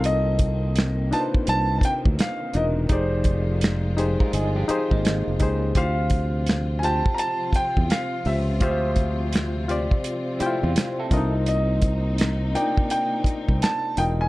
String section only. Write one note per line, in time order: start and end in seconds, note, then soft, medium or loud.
0.00 2.87 C3 medium
0.00 5.71 D#3 medium
0.00 2.87 A#3 medium
0.00 2.86 C4 medium
2.89 5.72 F3 medium
2.89 5.72 G#3 medium
2.89 5.72 F4 medium
5.75 14.28 C3 medium
5.75 11.07 F3 medium
5.75 14.28 C4 medium
5.75 11.07 F4 medium
11.11 14.29 A#3 medium
11.11 14.29 D#4 medium